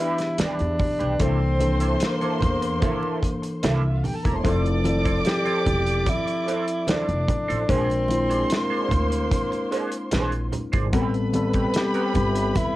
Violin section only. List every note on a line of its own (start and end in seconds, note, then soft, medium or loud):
0.00 0.76 B4 medium
0.00 0.75 B5 loud
1.20 3.72 C5 loud
1.20 3.72 C6 loud
3.85 3.94 E4 medium
3.85 3.95 E5 medium
3.94 4.04 F4 medium
3.94 4.04 F5 medium
4.04 4.14 G4 medium
4.04 4.14 G5 medium
4.14 4.24 A4 medium
4.14 4.24 A5 medium
4.24 4.34 A#4 medium
4.24 4.34 A#5 medium
4.35 4.45 C5 medium
4.35 4.45 C6 medium
4.45 7.25 D5 loud
4.45 7.25 D6 loud
7.68 10.48 C5 loud
7.68 10.49 C6 loud
10.94 12.76 B4 loud
10.94 12.76 B5 loud